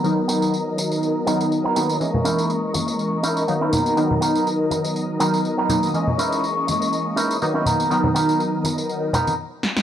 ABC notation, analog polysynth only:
X:1
M:4/4
L:1/8
Q:"Swing 16ths" 1/4=122
K:B
V:1 name="Analog polysynth"
[D,F,B,DA]4- [D,F,B,DA] [D,F,B,DA]2 [D,F,A,B,D] | [E,G,A,Cd]6 [D,F,A,B,D]2 | [D,F,B,DA]4- [D,F,B,DA] [D,F,B,DA]2 [D,F,A,B,D] | [E,G,A,Cd]6 [D,F,A,B,D]2 |
[D,F,B,DA]4- [D,F,B,DA] z3 |]